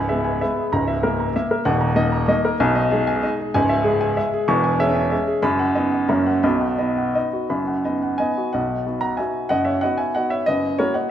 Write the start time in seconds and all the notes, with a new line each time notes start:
Already playing: C#1 C#2 G#5 B5
0.09 G#3 B3 E5
0.24 G#5
0.41 G#3 B3 E5
0.57 G#4
0.72 C#1 C#2 A#5
0.88 E5
1.03 A#3 A#4
1.20 A#5
1.36 A#3 E5
1.51 A#4
1.65 D#1 D#2 F#5
1.81 A#5
1.96 A#3 D#4 D#5
2.12 A#5
2.28 A#3 D#4 D#5
2.45 A#4
2.60 B1 B2 G#5
2.75 D#5
2.91 G#3 D#4 G#4
3.07 G#5
3.23 G#3 D#4 D#5
3.40 G#4
3.54 C#1 C#2 G#5
3.69 E5
3.84 G#3 G#4
4.01 G#5
4.17 G#3 E5
4.33 G#4
4.48 E1 E2 C#6
4.64 G#5
4.80 G#3 C#4 E5
4.95 G#5
5.11 G#3 C#4 E5
5.28 G#4
5.42 F#1 F#2 B5
5.59 F#5
5.75 B3 D#4 D#5
5.92 F#5
6.09 F#1 F#2 A#3 C#4 A#5
6.26 F#5
6.43 B1 B2 B5
6.61 F#5
6.78 B3 D#4 D#5
6.97 F#5
7.15 B3 D#4 D#5
7.33 F#4
7.50 F#1 F#2 B5
7.67 F#5
7.85 B3 D#4 D#5
8.02 F#5
8.18 B3 D#4 D#5 G#5
8.37 F#4
8.53 B1 B2 D#5 F#5
8.86 B3 D#4 F#4
9.01 F#5 A#5
9.17 B3 D#4 F#4 E5 G#5
9.49 F#1 F#2 D#5 F#5
9.65 C#5 E5
9.81 B3 D#4 F#4 D#5 F#5
9.98 E5 G#5
10.15 B3 D#4 F#4 D#5 F#5
10.30 C#5 E5
10.46 F#1 F#2 B4 D#5
10.79 A#3 E4 F#4 A#4 C#5
10.94 D#5 F#5